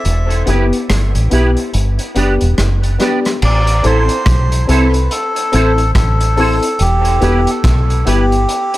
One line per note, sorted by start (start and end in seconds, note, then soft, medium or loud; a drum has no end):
0.00 0.43 E5 medium
0.05 0.44 E1 medium
0.05 closed hi-hat medium
0.30 closed hi-hat medium
0.46 0.71 F#1 medium
0.46 0.71 B3 medium
0.46 0.65 B3 medium
0.46 0.72 E4 medium
0.46 0.65 E4 medium
0.46 0.72 G4 medium
0.46 0.65 G4 medium
0.46 0.66 B4 medium
0.46 closed hi-hat medium
0.73 closed hi-hat soft
0.90 1.13 G1 medium
0.90 cross-stick loud
0.90 closed hi-hat medium
1.15 1.30 A1 medium
1.15 closed hi-hat medium
1.30 1.55 B1 medium
1.30 1.56 B3 medium
1.30 1.49 B3 medium
1.30 1.56 E4 medium
1.30 1.49 E4 medium
1.30 1.56 G4 medium
1.30 1.50 G4 medium
1.30 1.50 B4 medium
1.30 closed hi-hat medium
1.57 closed hi-hat soft
1.74 1.97 G1 medium
1.74 closed hi-hat medium
1.99 muted clean electric guitar stroke soft
1.99 closed hi-hat medium
2.15 2.39 F#1 medium
2.15 2.40 B3 medium
2.15 2.33 B3 medium
2.15 2.40 D4 medium
2.15 2.34 D4 medium
2.15 2.41 G4 loud
2.15 2.34 G4 medium
2.15 2.34 B4 medium
2.15 closed hi-hat medium
2.41 2.57 E1 medium
2.41 closed hi-hat medium
2.58 2.97 F#1 medium
2.58 cross-stick medium
2.58 closed hi-hat medium
2.83 closed hi-hat soft
2.99 3.24 B3 medium
2.99 3.18 B3 medium
2.99 3.24 D4 medium
2.99 3.18 D4 medium
2.99 3.25 G4 medium
2.99 3.18 G4 medium
2.99 3.18 B4 medium
2.99 cross-stick medium
2.99 closed hi-hat medium
3.25 cross-stick medium
3.25 closed hi-hat medium
3.42 3.81 A1 loud
3.42 3.87 D5 loud
3.42 crash medium
3.67 closed hi-hat medium
3.83 4.08 A1 loud
3.83 4.08 C4 medium
3.83 4.02 C4 medium
3.83 4.09 E4 medium
3.83 4.02 E4 medium
3.83 4.09 A4 medium
3.83 4.03 A4 medium
3.83 4.65 C5 loud
3.83 4.03 C5 medium
3.83 closed hi-hat soft
4.09 closed hi-hat medium
4.26 4.65 B1 loud
4.26 kick loud
4.26 cross-stick loud
4.26 closed hi-hat medium
4.52 closed hi-hat medium
4.67 5.07 C2 medium
4.67 4.93 C4 medium
4.67 4.86 C4 medium
4.67 4.93 E4 medium
4.67 4.87 E4 medium
4.67 4.93 A4 medium
4.67 4.87 A4 medium
4.67 5.12 B4 medium
4.67 4.87 C5 loud
4.67 closed hi-hat medium
4.94 closed hi-hat soft
5.11 5.91 A4 loud
5.11 closed hi-hat medium
5.36 muted clean electric guitar stroke medium
5.36 closed hi-hat medium
5.52 5.92 A1 medium
5.52 5.77 C4 medium
5.52 5.71 C4 medium
5.52 5.77 E4 medium
5.52 5.71 E4 medium
5.52 5.78 A4 loud
5.52 5.71 A4 loud
5.52 5.72 C5 loud
5.52 closed hi-hat medium
5.78 closed hi-hat medium
5.95 6.59 A1 medium
5.95 6.83 A4 loud
5.95 kick medium
5.95 cross-stick medium
5.95 closed hi-hat medium
6.21 closed hi-hat medium
6.36 6.62 C4 medium
6.36 6.55 C4 medium
6.36 6.62 E4 medium
6.36 6.56 E4 medium
6.36 6.62 A4 loud
6.36 6.56 A4 medium
6.36 6.56 C5 medium
6.36 open hi-hat medium
6.63 closed hi-hat medium
6.79 7.18 E1 medium
6.79 7.50 G4 loud
6.79 closed hi-hat medium
7.05 closed hi-hat medium
7.20 7.45 E1 loud
7.20 7.46 B3 medium
7.20 7.39 B3 medium
7.20 7.46 E4 medium
7.20 7.40 E4 medium
7.20 7.46 G4 loud
7.20 7.40 G4 medium
7.20 7.40 B4 loud
7.20 closed hi-hat medium
7.47 8.09 A4 medium
7.47 closed hi-hat medium
7.64 8.03 B1 loud
7.64 kick loud
7.64 cross-stick loud
7.64 closed hi-hat medium
7.90 closed hi-hat medium
8.05 8.45 G1 medium
8.05 8.30 B3 medium
8.05 8.23 B3 medium
8.05 8.31 E4 medium
8.05 8.24 E4 medium
8.05 8.31 G4 medium
8.05 8.24 G4 medium
8.05 8.78 G4 medium
8.05 8.24 B4 medium
8.05 closed hi-hat medium
8.32 closed hi-hat soft
8.49 closed hi-hat medium
8.74 muted clean electric guitar stroke soft
8.74 closed hi-hat medium